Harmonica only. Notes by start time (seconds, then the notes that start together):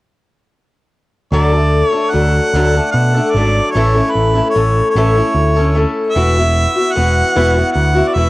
1.33 D5
1.86 C#5
2.10 F#5
2.92 F#5
3.31 D5
3.71 C#5
4.11 B4
4.50 C#5
4.90 C#5
6.10 E5
6.93 F#5
7.72 F#5
8.08 D5
8.14 E5